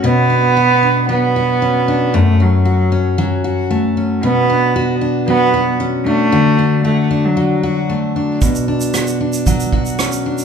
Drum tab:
SH |----------------|----------------|----------------|----------------|
SD |----------------|----------------|----------------|----------------|
BD |----------------|----------------|----------------|----------------|

SH |xx-xxx-xxx-xxx-x|
SD |----r-------r---|
BD |o-------o-o-----|